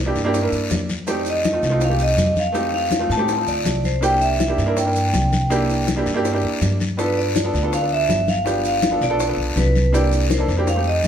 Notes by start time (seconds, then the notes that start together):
0.06 A#3 D4 E4 G4
0.15 G2, high bongo, high conga, short guiro, maracas
0.24 A#3 D4 E4 G4
0.34 high bongo, high conga, long guiro, maracas
0.42 A#3 D4 E4 A#4
0.52 G2, high conga, maracas
0.70 F2, high bongo, low bongo, high conga, short guiro, maracas
0.89 high bongo, high conga, short guiro, maracas
1.07 A3 C4 D#4 G4 D5, high bongo, high conga, long guiro, maracas
1.26 D#5, high bongo, high conga, maracas
1.44 high bongo, high conga, short guiro, maracas
1.52 A3 C4 D#4 F4
1.63 C2, high bongo, high conga, short guiro, maracas
1.70 A3 C4 D#4 F4
1.81 F5, high bongo, high conga, long guiro, maracas
1.89 A3 C4 D#4 G4
1.99 D#5, high conga, maracas
2.17 F2, high bongo, low bongo, high conga, short guiro, maracas
2.36 F5, high bongo, high conga, short guiro, maracas
2.52 A3 C4 D#4 G4, high bongo, high conga, long guiro, maracas
2.73 F5, high bongo, high conga
2.91 high bongo, high conga, short guiro, maracas
2.99 A3 C4 D#4 F4
3.09 A2 A5, high bongo, high conga, short guiro, maracas
3.17 A3 C4 D#4 G4
3.28 high bongo, high conga, long guiro, maracas
3.36 A3 C4 D#4 F4
3.46 D2 D5, high conga, maracas
3.65 C2, high bongo, low bongo, high conga, short guiro, maracas
3.84 C5, high bongo, high conga, short guiro, maracas
4.01 A#3 D4 E4 G4 G5, high bongo, high conga, long guiro, maracas
4.21 E5, high bongo, high conga, maracas
4.40 high bongo, high conga, short guiro, maracas
4.48 A#3 D4 E4 G4
4.58 G2, high bongo, high conga, short guiro, maracas
4.66 A#3 D4 E4 A#4
4.77 G5, high bongo, high conga, long guiro, maracas
4.85 A#3 D4 E4 A#4
4.96 high conga, maracas
5.13 C2, high bongo, low bongo, high conga, short guiro, maracas
5.32 high bongo, high conga, short guiro, maracas
5.50 A#3 D4 E4 G4, high bongo, long guiro, maracas
5.69 high bongo, high conga, maracas
5.88 high bongo, high conga, short guiro, maracas
5.96 A#3 D4 E4 G4
6.06 G2, high bongo, high conga, short guiro, maracas
6.14 A#3 D4 E4 G4
6.25 high bongo, high conga, long guiro, maracas
6.33 A#3 D4 E4 G4
6.43 F2, high conga
6.61 G2, high bongo, low bongo, high conga, short guiro, maracas
6.80 high bongo, high conga, short guiro, maracas
6.97 B3 D4 F4 A4 B4, high bongo, high conga, long guiro, maracas
7.17 D5, high bongo, high conga
7.36 high bongo, high conga, short guiro, maracas
7.44 B3 D4 F4 A4
7.53 D2, high bongo, high conga, short guiro, maracas
7.62 B3 D4 F4 A4
7.73 F5, high bongo, high conga, long guiro, maracas
7.81 B3 D4 F4 A4
7.91 E5, high conga
8.09 G1, high bongo, low bongo, high conga, short guiro, maracas
8.27 F5, high bongo, high conga, short guiro, maracas
8.45 B3 D4 F4 G4, high bongo, high conga, long guiro, maracas
8.64 F5, high bongo, high conga, maracas
8.82 high bongo, high conga, short guiro, maracas
8.91 B3 D4 F4 A4
9.01 B1 D5, high bongo, high conga, short guiro, maracas
9.09 B3 D4 F4 A4
9.20 high bongo, high conga, long guiro, maracas
9.28 B3 D4 F4 A4
9.37 B1, high conga
9.56 C2 B4, high bongo, low bongo, high conga, short guiro, maracas
9.75 high bongo, high conga, short guiro, maracas
9.92 A#3 D4 E4 G4 D5, high bongo, long guiro, maracas
10.12 high bongo, high conga, maracas
10.24 A#4
10.30 C5, high bongo, high conga, short guiro, maracas
10.38 A#3 D4 E4 A4
10.48 F2, high bongo, high conga, short guiro, maracas
10.57 A#3 D4 E4 G4
10.67 F5, high bongo, high conga, long guiro, maracas
10.75 A3 C4 D#4 G4
10.85 D#5, high conga
11.03 G2, high conga, short guiro, maracas